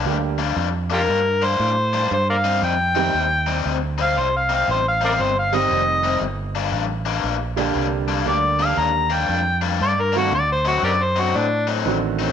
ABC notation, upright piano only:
X:1
M:4/4
L:1/8
Q:"Swing" 1/4=117
K:Gm
V:1 name="Upright piano"
[D,G,B,DG] z6 z | z3 [E,G,CEG] z4 | z4 z [E,G,CEG]3 | z4 z [D,G,B,DG]3 |
[D,G,B,DG]3 z4 [E,A,CD^F] | z6 [E,A,CD^F]2 |]